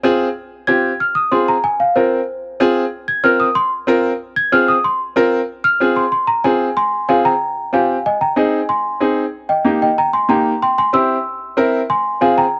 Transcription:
0.03 C4 F4 G#4
0.67 C4 F4 G4 G#6
1.00 F6
1.15 D#6
1.31 C4 F4 G#4 C6
1.48 A#5
1.64 G#5
1.80 F5
1.96 C4 F4 A#4 C5
2.60 C4 F4 G#4
3.08 G#6
3.24 C4 F4 A#4 F6
3.40 D#6
3.55 C6
3.87 C4 F4 A#4
4.36 G#6
4.52 C4 F4 G#4 F6
4.68 D#6
4.84 C6
5.16 C4 F4 A#4
5.64 F6
5.80 C4 F4 G#4
5.96 C6
6.12 C6
6.27 A#5
6.44 C4 F4 G#4 G#5
6.77 G#5 C6
7.09 C4 F4 G#4 F5 G#5
7.25 G5 A#5
7.73 C4 F4 G4 F5 G#5
8.06 D#5 G#5
8.21 G5 A#5
8.36 C4 D#4 G#4 D#5 G#5
8.69 G#5 C6
9.00 C4 D#4 G#4
9.49 D#5 G5
9.65 A#3 D#4 G4
9.82 D#5 G5
9.98 G5 A#5
10.13 G#5 C6
10.29 A#3 D#4 G4 G5 A#5
10.62 G5 C6
10.78 G#5 C6
10.93 C4 E4 G4 C6 E6
11.57 C4 E4 A#4
11.90 G#5 C6
12.21 C4 F4 G#4 F5 G#5
12.38 G5 A#5

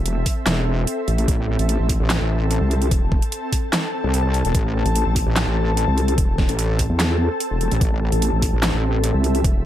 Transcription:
Already playing: E1 C4 A4 E5
0.06 closed hi-hat
0.26 kick, open hi-hat
0.46 E1, snare, clap, closed hi-hat
0.87 closed hi-hat
1.08 A1, closed hi-hat
1.18 closed hi-hat
1.28 A1, kick, closed hi-hat
1.59 A1, closed hi-hat
1.69 closed hi-hat
1.80 A1
1.89 kick, open hi-hat
2.00 A1
2.07 A5, snare, clap, closed hi-hat
2.20 A1
2.51 closed hi-hat
2.61 C2
2.71 closed hi-hat
2.82 closed hi-hat
2.91 E1, kick, closed hi-hat
3.02 E1
3.12 kick
3.22 closed hi-hat
3.32 closed hi-hat
3.53 kick, open hi-hat
3.73 snare, clap, closed hi-hat
4.04 C2
4.14 closed hi-hat
4.34 closed hi-hat
4.45 E1, closed hi-hat
4.55 A1, kick, closed hi-hat
4.86 A1, closed hi-hat
4.96 closed hi-hat
5.06 A1
5.16 kick, open hi-hat
5.26 A1
5.36 snare, clap, closed hi-hat
5.47 A1
5.77 closed hi-hat
5.88 C2
5.98 closed hi-hat
6.08 closed hi-hat
6.18 E1, kick, closed hi-hat
6.29 E1
6.38 kick, snare
6.49 A1, closed hi-hat
6.59 closed hi-hat
6.79 kick, open hi-hat
6.90 E2
7.00 snare, clap, closed hi-hat
7.40 closed hi-hat
7.51 E1
7.61 closed hi-hat
7.71 A1, closed hi-hat
7.81 A1, kick, closed hi-hat
8.12 A1, closed hi-hat
8.22 closed hi-hat
8.33 A1
8.42 kick, open hi-hat
8.53 A1
8.60 E5, snare, clap, closed hi-hat
8.73 A1
9.04 closed hi-hat
9.14 C2
9.24 closed hi-hat
9.35 closed hi-hat
9.44 E1, kick, closed hi-hat
9.55 E1

